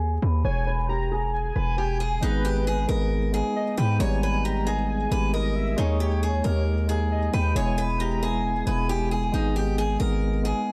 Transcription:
Already playing: D#2 G#4
0.22 D#2 B4
0.45 E1 C#5 G#5
0.67 B4
0.89 G4 A#5
1.11 G#4
1.33 G#5
1.56 E1 B4
1.78 G4
2.00 G#4
2.21 G#1 G#3 B3 D#4 G#4 B4
2.45 G4
2.67 G#4
2.87 G#1 G#3 B3 D#4 G#4 A#4
3.32 G#3 B3 D#4 G#4
3.56 D#5
3.77 G#2 B4 G5
3.99 G#1 G3 G#3 B3 D#4 C#5 G#5
4.23 B4
4.45 G4 A#5
4.65 G#3 B3 D#4 G#4
4.89 G#5
5.09 G#1 G#3 B3 D#4 G4 B4
5.34 A#4 D#5
5.56 E5
5.76 D#2 G#3 A#3 D#4 G#4 C#5
6.00 G4
6.23 G#4
6.43 D#2 G#3 A#3 D#4 G4 A#4
6.87 G#3 A#3 D#4 G#4
7.11 D#5
7.33 D#2 B4 G5
7.54 E1 G#3 B3 E4 G#4 C#5 G#5
7.78 B4
8.00 G4 A#5
8.21 G#3 B3 E4 G#4
8.45 G#5
8.65 E1 G#3 B3 E4 G#4 B4
8.89 G4
9.11 G#4
9.32 G#1 G#3 B3 D#4 G#4
9.56 G4
9.78 G#4
9.99 G#1 G#3 B3 D#4 G#4 A#4
10.43 G#3 B3 D#4 G#4

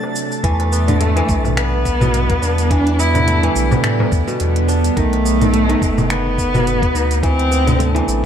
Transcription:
Already playing: C3 F#3 A3 D4 A5
0.03 darbuka ka
0.16 cabasa
0.32 cabasa
0.44 E2 D3 E3 G3 A3 B3 E4, kick, closed hi-hat, cabasa
0.60 closed hi-hat, darbuka tek
0.72 B3, cabasa
0.88 D3, closed hi-hat, mid tom, cabasa
1.00 A3, closed hi-hat, cabasa
1.16 E3, closed hi-hat, darbuka ka
1.29 B1, kick, cabasa
1.45 mid tom, darbuka ka, darbuka dum, cabasa
1.57 B3, finger snap, closed hi-hat, cabasa
1.86 kick, cabasa
2.01 B2, mid tom, darbuka ka, darbuka dum, cabasa
2.14 closed hi-hat, cabasa
2.30 kick, closed hi-hat
2.42 E2 D4, cabasa
2.58 closed hi-hat, cabasa
2.70 E3 D4, kick, closed hi-hat, cabasa
2.87 closed hi-hat
2.99 B3 E4, cabasa
3.14 D3, closed hi-hat, mid tom, darbuka dum, cabasa
3.27 A3, closed hi-hat, cabasa
3.43 E3, closed hi-hat, darbuka ka
3.56 B1, cabasa
3.71 mid tom, darbuka ka, darbuka dum, cabasa
3.84 A2, finger snap, closed hi-hat, cabasa
3.99 mid tom, darbuka tek
4.12 E2, kick, cabasa
4.28 B2, cabasa
4.40 E2, closed hi-hat, cabasa
4.56 closed hi-hat
4.68 D4, cabasa
4.84 closed hi-hat, cabasa
4.97 B1 D#3 A3 D#4, kick, closed hi-hat, cabasa
5.13 closed hi-hat, darbuka tek
5.25 B3, cabasa
5.41 D#3, closed hi-hat, mid tom, cabasa
5.53 A3, closed hi-hat, cabasa
5.69 D#3, closed hi-hat, darbuka ka
5.82 F#1, kick, cabasa
5.98 mid tom, darbuka ka, darbuka dum, cabasa
6.10 B3, finger snap, closed hi-hat, cabasa
6.38 kick, cabasa
6.54 B2, mid tom, darbuka ka, darbuka dum, cabasa
6.67 closed hi-hat, cabasa
6.82 kick, closed hi-hat
6.94 D2 D#4, cabasa
7.11 closed hi-hat, cabasa
7.23 E3 F#3 A3 C4 D4, kick, closed hi-hat, cabasa
7.39 closed hi-hat
7.51 B3, cabasa
7.66 D3, closed hi-hat, mid tom, darbuka dum, cabasa
7.79 A3, closed hi-hat, cabasa
7.95 E3, closed hi-hat, darbuka ka
8.08 A1, cabasa

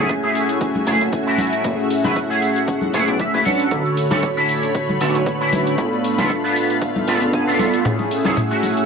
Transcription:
Already playing: A3 C#4 E4 F#4 G#4 E5 G#5
0.09 kick, closed hi-hat, shaker
0.23 A3 E4 G#4, shaker
0.35 open hi-hat, shaker
0.49 closed hi-hat, shaker
0.61 kick, closed hi-hat, shaker
0.75 high conga, shaker
0.86 F#1 A3 C#4 E4 G#4, open hi-hat, shaker
1.01 F#1, closed hi-hat, shaker
1.13 muted clean electric guitar stroke, kick, closed hi-hat, shaker
1.27 A3 E4 F#4, shaker
1.38 open hi-hat, high conga, shaker
1.53 closed hi-hat, shaker
1.63 F#1 A3 C#4 E4 G#4 F#5, kick, closed hi-hat, shaker
1.79 shaker
1.91 open hi-hat, shaker
2.04 F#1 A3 E4 B4, closed hi-hat, high conga, low conga, shaker
2.16 kick, closed hi-hat, shaker
2.30 A3 E4 G#4, shaker
2.42 open hi-hat, shaker
2.56 closed hi-hat, shaker
2.68 kick, closed hi-hat, shaker
2.81 high conga, shaker
2.93 F#1 A3 E4 G#4 C#5, open hi-hat, shaker
3.08 B1 D5, closed hi-hat, shaker
3.20 E5, muted clean electric guitar stroke, kick, closed hi-hat, shaker
3.34 F#1 A3 E4 B4, shaker
3.45 A3 C#4 D4 F#4 A4 B4 C#5 F#5 B5, open hi-hat, high conga, shaker
3.60 closed hi-hat, shaker
3.71 B1 D3 F#4 A4 C#5, kick, closed hi-hat, shaker
3.85 shaker
3.97 open hi-hat, shaker
4.11 B1 C#4 D4 A4, closed hi-hat, high conga, low conga, shaker
4.23 kick, closed hi-hat, shaker
4.37 C#4 D4 E4, shaker
4.49 open hi-hat, shaker
4.63 closed hi-hat, shaker
4.75 kick, closed hi-hat, shaker
4.89 high conga, shaker
5.00 B1 D3 C#4 D4 F#4 A4 B4 C#5, open hi-hat, shaker
5.15 B1, closed hi-hat, shaker
5.26 muted clean electric guitar stroke, kick, closed hi-hat, shaker
5.41 C#4 D4 E4, shaker
5.53 open hi-hat, high conga, shaker
5.67 closed hi-hat, shaker
5.78 C#2 B3 D4 F4 A4 F5, kick, closed hi-hat, shaker
5.93 shaker
6.04 open hi-hat, shaker
6.18 C#2 B3 D4 F4 A4, closed hi-hat, high conga, low conga, shaker
6.30 kick, closed hi-hat, shaker
6.44 B3 D4 F4 B4, shaker
6.56 open hi-hat, shaker
6.70 closed hi-hat, shaker
6.82 kick, closed hi-hat, shaker
6.96 high conga, shaker
7.07 C#2 B3 D4 F4 A4, open hi-hat, shaker
7.21 B3 D4 F4 A4, closed hi-hat, shaker
7.33 G#5, muted clean electric guitar stroke, kick, closed hi-hat, shaker
7.47 B3 D4 F4 A4 F5, shaker
7.59 open hi-hat, high conga, shaker
7.74 closed hi-hat, shaker
7.85 F#1 A3 C#4 E4 G#4 F#5 G#5 E6, kick, closed hi-hat, mid tom, shaker
7.99 muted conga, shaker
8.11 open hi-hat, shaker
8.25 F#1 A3 E4 G#4, closed hi-hat, muted conga, high conga, low conga, shaker
8.37 kick, closed hi-hat, mid tom, shaker
8.51 A3 E4 F#4, shaker
8.63 open hi-hat, muted conga, shaker
8.77 closed hi-hat, shaker

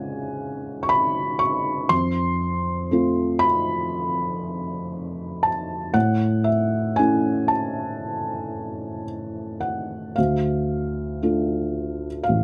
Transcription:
Already playing: C#3 G#3 C#4 F4 F#5 G#5
0.83 C#6
0.89 B5
1.39 C#6
1.89 F2 C6
2.91 A3 C4 F4
3.39 B5
5.43 A5
5.94 A2 F#5
6.44 E5
6.96 A3 C#4 E4 G#5
7.48 A5
9.60 F#5
10.16 D2 F5
11.22 A3 D4 F4
12.23 F5
12.29 A1

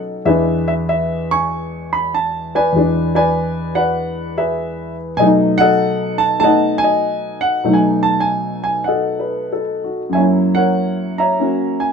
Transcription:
Already playing: B2 F#3 A3 C#4 D#4 A4 D#5
0.25 E2 E3 G#3 D4 G#4 B4 E5
0.68 E5
0.89 E5
1.31 G#5 C#6
1.93 B5
2.14 A5
2.55 B4 D5 G#5
2.73 E2 E3 G#3
2.78 D4
3.15 B4 D5 G#5
3.75 B4 D5 F#5
4.38 G#4 B4 E5
5.17 B2 F#3 A3 D#5 G#5
5.22 D#4
5.58 A4 D#5 F#5
6.18 A5
6.40 A3 B3 D#4 F#5 A5
6.44 D#5
6.78 G#5
6.84 D#5
7.41 F#5
7.64 B2 F#3 A3 D#4
7.74 G#5
8.03 A5
8.20 G#5
8.64 G#5
8.84 D#5 F#5
8.89 A4
9.20 B4
9.53 A4
9.84 F#4
10.10 F#2 F#3 G#5
10.15 A#3 C#5 E5
10.21 E4
10.55 A#4 C#5 F#5
11.18 C#5 E5 A#5
11.40 A#3 C#4 F#4
11.80 G#5

